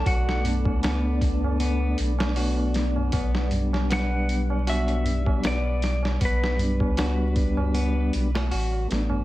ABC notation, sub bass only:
X:1
M:4/4
L:1/16
Q:"Swing 16ths" 1/4=78
K:Glyd
V:1 name="Sub bass" clef=bass
B,,,3 C,,6- C,, B,,,6 | B,,,16 | B,,,3 C,,6- C,, B,,,2 A,,,2 A,,,2 |]